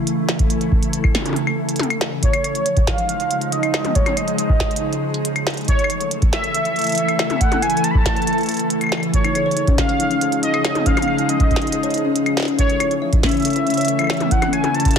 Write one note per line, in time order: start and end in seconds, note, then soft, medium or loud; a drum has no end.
0.00 9.13 C#3 medium
0.00 2.23 E3 medium
0.00 2.23 A3 medium
0.00 2.23 E4 medium
0.00 2.23 A4 medium
0.07 closed hi-hat medium
0.29 snare loud
0.39 kick loud
0.39 closed hi-hat soft
0.50 closed hi-hat medium
0.61 closed hi-hat soft
0.72 kick loud
0.83 closed hi-hat medium
0.93 closed hi-hat medium
1.04 kick loud
1.04 claves medium
1.15 snare loud
1.15 high tom soft
1.15 claves medium
1.18 high tom soft
1.22 closed hi-hat soft
1.22 high tom medium
1.26 high tom medium
1.29 high tom medium
1.33 closed hi-hat medium
1.33 high tom medium
1.47 claves medium
1.69 closed hi-hat medium
1.76 closed hi-hat soft
1.79 closed hi-hat medium
1.79 high tom loud
1.83 closed hi-hat soft
1.90 closed hi-hat soft
1.90 claves medium
2.01 snare loud
2.23 2.89 C#5 loud
2.23 kick medium
2.23 closed hi-hat loud
2.33 closed hi-hat soft
2.33 claves medium
2.44 closed hi-hat medium
2.44 claves soft
2.51 5.68 F3 medium
2.55 closed hi-hat soft
2.66 closed hi-hat loud
2.77 kick loud
2.77 closed hi-hat soft
2.83 5.68 D#4 medium
2.87 3.54 F5 loud
2.87 kick medium
2.87 snare loud
2.87 closed hi-hat medium
2.96 5.68 G#3 medium
2.96 closed hi-hat soft
3.09 closed hi-hat medium
3.20 closed hi-hat soft
3.31 closed hi-hat medium
3.41 closed hi-hat soft
3.52 3.97 D#5 loud
3.52 closed hi-hat loud
3.63 closed hi-hat soft
3.63 claves medium
3.70 5.68 G#4 medium
3.70 snare loud
3.70 closed hi-hat soft
3.70 claves medium
3.85 closed hi-hat soft
3.85 high tom medium
3.95 4.19 C#5 loud
3.95 kick medium
3.95 closed hi-hat medium
4.06 closed hi-hat soft
4.06 high tom medium
4.06 claves medium
4.17 5.03 D#5 loud
4.17 closed hi-hat medium
4.17 claves soft
4.28 closed hi-hat soft
4.38 closed hi-hat loud
4.49 kick loud
4.60 kick medium
4.60 snare loud
4.71 closed hi-hat soft
4.76 closed hi-hat loud
4.93 closed hi-hat soft
5.14 closed hi-hat soft
5.25 closed hi-hat loud
5.36 closed hi-hat soft
5.36 claves medium
5.47 snare loud
5.47 closed hi-hat soft
5.50 closed hi-hat soft
5.54 closed hi-hat soft
5.57 closed hi-hat soft
5.61 closed hi-hat soft
5.65 closed hi-hat soft
5.68 6.08 C#5 loud
5.68 kick medium
5.68 closed hi-hat medium
5.79 closed hi-hat soft
5.83 9.13 E3 medium
5.83 9.13 A3 medium
5.83 claves medium
5.89 9.14 A4 medium
5.89 closed hi-hat medium
5.89 claves soft
6.01 closed hi-hat soft
6.11 closed hi-hat loud
6.22 kick loud
6.22 closed hi-hat soft
6.30 9.14 E4 medium
6.30 7.42 E5 loud
6.30 snare loud
6.30 closed hi-hat medium
6.44 closed hi-hat soft
6.54 closed hi-hat medium
6.65 closed hi-hat soft
6.76 closed hi-hat soft
6.79 closed hi-hat soft
6.81 closed hi-hat soft
6.84 closed hi-hat soft
6.87 closed hi-hat soft
6.89 closed hi-hat soft
6.92 closed hi-hat medium
6.95 closed hi-hat medium
6.98 closed hi-hat loud
7.08 closed hi-hat soft
7.08 claves medium
7.19 snare loud
7.19 claves medium
7.30 closed hi-hat soft
7.30 high tom medium
7.41 7.64 F#5 loud
7.41 kick medium
7.41 closed hi-hat medium
7.52 closed hi-hat soft
7.52 high tom medium
7.62 7.86 G#5 loud
7.62 closed hi-hat medium
7.62 claves soft
7.70 closed hi-hat medium
7.77 closed hi-hat soft
7.84 7.93 A5 loud
7.84 closed hi-hat medium
7.91 8.00 B5 medium
7.91 kick loud
7.98 8.70 A5 loud
8.06 kick medium
8.06 snare loud
8.06 closed hi-hat medium
8.16 closed hi-hat soft
8.22 closed hi-hat soft
8.27 closed hi-hat medium
8.33 closed hi-hat soft
8.38 closed hi-hat soft
8.41 closed hi-hat soft
8.43 closed hi-hat soft
8.46 closed hi-hat soft
8.49 closed hi-hat medium
8.51 closed hi-hat soft
8.54 closed hi-hat soft
8.57 closed hi-hat soft
8.59 closed hi-hat soft
8.70 closed hi-hat medium
8.81 closed hi-hat soft
8.81 claves soft
8.84 claves soft
8.87 claves soft
8.89 snare loud
8.89 closed hi-hat soft
8.89 claves soft
8.95 claves soft
8.97 claves soft
9.00 closed hi-hat soft
9.00 claves soft
9.14 14.99 C#3 medium
9.14 9.20 F4 medium
9.14 9.75 C#5 loud
9.14 kick medium
9.14 closed hi-hat medium
9.24 9.30 D#4 loud
9.24 closed hi-hat soft
9.24 claves medium
9.35 9.41 G#4 loud
9.35 closed hi-hat medium
9.35 claves soft
9.44 12.59 F3 medium
9.44 12.59 G#3 medium
9.44 9.50 C#5 loud
9.51 closed hi-hat soft
9.57 9.63 D#4 medium
9.57 closed hi-hat medium
9.67 9.71 C#4 loud
9.67 kick loud
9.67 closed hi-hat soft
9.78 9.84 G#4 medium
9.78 10.39 F5 loud
9.78 kick medium
9.78 snare loud
9.78 closed hi-hat medium
9.89 9.95 F4 medium
9.89 closed hi-hat soft
10.00 10.04 D#4 loud
10.00 12.59 D#4 medium
10.00 closed hi-hat medium
10.11 10.17 C#4 medium
10.11 closed hi-hat soft
10.21 10.28 G#4 loud
10.21 12.59 G#4 medium
10.21 closed hi-hat medium
10.32 10.38 F4 medium
10.32 closed hi-hat soft
10.43 10.49 D#4 loud
10.43 10.88 D#5 loud
10.43 closed hi-hat medium
10.54 10.60 G#4 loud
10.54 closed hi-hat soft
10.54 claves medium
10.65 10.68 C#5 loud
10.65 snare loud
10.65 closed hi-hat soft
10.65 claves medium
10.75 10.82 D#4 medium
10.75 closed hi-hat soft
10.75 high tom medium
10.86 10.90 C#4 loud
10.86 11.31 F5 loud
10.86 kick medium
10.86 closed hi-hat medium
10.97 closed hi-hat soft
10.97 high tom medium
10.97 claves medium
11.02 closed hi-hat medium
11.08 claves soft
11.18 11.22 D#4 loud
11.18 closed hi-hat soft
11.29 11.35 C#4 medium
11.29 12.37 D#5 medium
11.29 closed hi-hat medium
11.40 11.46 G#4 loud
11.40 kick loud
11.40 closed hi-hat soft
11.51 11.57 F4 medium
11.51 kick medium
11.51 closed hi-hat soft
11.56 snare loud
11.56 closed hi-hat soft
11.62 11.68 D#4 loud
11.62 closed hi-hat soft
11.67 closed hi-hat medium
11.72 11.79 G#4 loud
11.72 closed hi-hat medium
11.83 11.87 C#5 loud
11.83 closed hi-hat soft
11.90 12.00 D#4 medium
11.90 closed hi-hat soft
11.94 closed hi-hat medium
11.98 closed hi-hat soft
12.05 12.09 C#4 loud
12.15 12.22 G#4 medium
12.15 closed hi-hat medium
12.26 12.33 F4 medium
12.26 closed hi-hat soft
12.26 claves medium
12.37 snare loud
12.37 closed hi-hat soft
12.40 snare medium
12.43 snare medium
12.45 12.54 C#4 medium
12.45 snare medium
12.45 closed hi-hat soft
12.59 12.65 C#5 loud
12.59 12.99 C#5 loud
12.59 kick medium
12.59 closed hi-hat medium
12.69 12.76 A4 medium
12.69 closed hi-hat soft
12.80 12.86 E4 loud
12.80 closed hi-hat medium
12.80 claves medium
12.86 14.99 E3 medium
12.91 14.99 A3 medium
12.91 12.97 C#5 loud
12.91 closed hi-hat soft
13.02 13.06 E5 loud
13.13 13.19 E4 medium
13.13 kick loud
13.13 closed hi-hat soft
13.23 13.27 C#4 loud
13.23 14.33 E5 loud
13.23 kick medium
13.23 snare loud
13.23 closed hi-hat soft
13.26 closed hi-hat soft
13.29 closed hi-hat soft
13.31 13.40 C#5 medium
13.31 closed hi-hat medium
13.34 closed hi-hat soft
13.37 closed hi-hat soft
13.40 closed hi-hat soft
13.42 closed hi-hat soft
13.45 13.51 A4 medium
13.45 closed hi-hat medium
13.48 closed hi-hat soft
13.50 closed hi-hat soft
13.53 closed hi-hat soft
13.56 13.60 E4 loud
13.56 closed hi-hat soft
13.62 14.99 E4 medium
13.67 13.73 C#4 medium
13.67 closed hi-hat soft
13.70 closed hi-hat soft
13.74 14.99 A4 medium
13.74 13.84 C#5 loud
13.74 closed hi-hat soft
13.77 closed hi-hat soft
13.81 closed hi-hat soft
13.85 13.94 A4 medium
13.85 closed hi-hat medium
13.88 closed hi-hat medium
13.99 14.05 E4 loud
13.99 closed hi-hat soft
13.99 claves medium
14.02 claves soft
14.04 claves soft
14.07 snare loud
14.07 closed hi-hat soft
14.07 claves soft
14.10 14.16 C#5 loud
14.10 closed hi-hat soft
14.10 claves medium
14.17 closed hi-hat soft
14.17 claves soft
14.20 14.24 E5 loud
14.20 closed hi-hat soft
14.20 high tom loud
14.31 14.38 E4 medium
14.31 14.55 F#5 loud
14.31 kick medium
14.31 closed hi-hat medium
14.42 14.46 C#4 loud
14.42 closed hi-hat soft
14.42 high tom medium
14.42 claves medium
14.53 14.59 C#5 medium
14.53 14.76 G#5 loud
14.53 closed hi-hat medium
14.53 claves soft
14.64 14.70 A4 medium
14.64 closed hi-hat soft
14.64 high tom medium
14.74 14.78 E4 loud
14.74 14.99 A5 loud
14.74 closed hi-hat soft
14.80 closed hi-hat medium
14.85 14.92 C#4 medium
14.85 kick loud
14.85 closed hi-hat medium
14.88 closed hi-hat soft
14.91 closed hi-hat medium
14.93 closed hi-hat soft